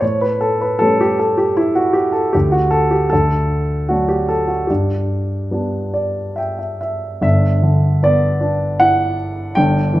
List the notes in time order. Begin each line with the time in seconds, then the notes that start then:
0.01 A2 C#5
0.21 B4
0.41 A4
0.61 B4
0.79 G3 A3 C#4 A4
1.01 G4
1.19 A4
1.38 G4
1.57 E4
1.75 F#4
1.93 G4
2.12 A4
2.33 D2 G4
2.52 F#4
2.71 A4
2.91 G4
3.10 D2 A4
3.89 F#3 A3 D4 F#4
4.09 G4
4.29 A4
4.48 F#4
4.67 G2 G4
5.51 G3 B3 D4
5.94 D5
6.36 E5 G5
6.59 E5
6.81 E5
7.21 G1 G2 E5
7.63 D3
8.03 B3 D5
8.41 D4
8.80 E4 F#5
9.55 G1 G2 G5
9.93 E3